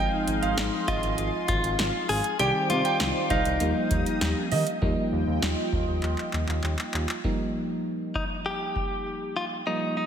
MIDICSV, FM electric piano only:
0, 0, Header, 1, 2, 480
1, 0, Start_track
1, 0, Key_signature, -3, "major"
1, 0, Tempo, 606061
1, 1897, Time_signature, 4, 2, 24, 8
1, 7970, End_track
2, 0, Start_track
2, 0, Title_t, "FM electric piano"
2, 0, Program_c, 0, 5
2, 0, Note_on_c, 0, 53, 69
2, 0, Note_on_c, 0, 56, 62
2, 0, Note_on_c, 0, 60, 64
2, 0, Note_on_c, 0, 63, 77
2, 1865, Note_off_c, 0, 53, 0
2, 1865, Note_off_c, 0, 56, 0
2, 1865, Note_off_c, 0, 60, 0
2, 1865, Note_off_c, 0, 63, 0
2, 1897, Note_on_c, 0, 51, 67
2, 1897, Note_on_c, 0, 55, 64
2, 1897, Note_on_c, 0, 60, 63
2, 1897, Note_on_c, 0, 74, 76
2, 2837, Note_off_c, 0, 51, 0
2, 2837, Note_off_c, 0, 55, 0
2, 2837, Note_off_c, 0, 60, 0
2, 2837, Note_off_c, 0, 74, 0
2, 2856, Note_on_c, 0, 53, 69
2, 2856, Note_on_c, 0, 55, 62
2, 2856, Note_on_c, 0, 58, 64
2, 2856, Note_on_c, 0, 63, 74
2, 3797, Note_off_c, 0, 53, 0
2, 3797, Note_off_c, 0, 55, 0
2, 3797, Note_off_c, 0, 58, 0
2, 3797, Note_off_c, 0, 63, 0
2, 3816, Note_on_c, 0, 53, 78
2, 3816, Note_on_c, 0, 55, 72
2, 3816, Note_on_c, 0, 58, 72
2, 3816, Note_on_c, 0, 63, 88
2, 5704, Note_off_c, 0, 63, 0
2, 5705, Note_off_c, 0, 53, 0
2, 5705, Note_off_c, 0, 55, 0
2, 5705, Note_off_c, 0, 58, 0
2, 5736, Note_on_c, 0, 53, 75
2, 5736, Note_on_c, 0, 55, 65
2, 5736, Note_on_c, 0, 58, 67
2, 5736, Note_on_c, 0, 63, 83
2, 7625, Note_off_c, 0, 53, 0
2, 7625, Note_off_c, 0, 55, 0
2, 7625, Note_off_c, 0, 58, 0
2, 7625, Note_off_c, 0, 63, 0
2, 7656, Note_on_c, 0, 53, 63
2, 7656, Note_on_c, 0, 55, 57
2, 7656, Note_on_c, 0, 58, 56
2, 7656, Note_on_c, 0, 63, 67
2, 7970, Note_off_c, 0, 53, 0
2, 7970, Note_off_c, 0, 55, 0
2, 7970, Note_off_c, 0, 58, 0
2, 7970, Note_off_c, 0, 63, 0
2, 7970, End_track
0, 0, End_of_file